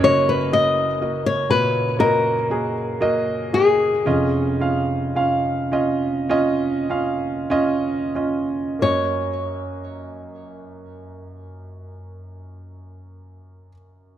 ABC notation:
X:1
M:4/4
L:1/16
Q:1/4=51
K:F#
V:1 name="Nylon-string guitar"
c B d3 c B2 A6 G2- | G12- G2 z2 | c16 |]
V:2 name="Grand piano"
[A,Fd]2 [A,Fd]2 [A,Fd]2 [A,,Fc]2 [A,Fd]2 [A,FG]2 [A,Fd]2 [A,FG]2 | [CEd]2 [CEe]2 [CEe]2 [CEd]2 [CEd]2 [CEe]2 [CEd]2 [CEd]2 | [A,Fd]16 |]
V:3 name="Grand piano" clef=bass
[F,,,F,,]16 | [E,,,E,,]16 | F,,16 |]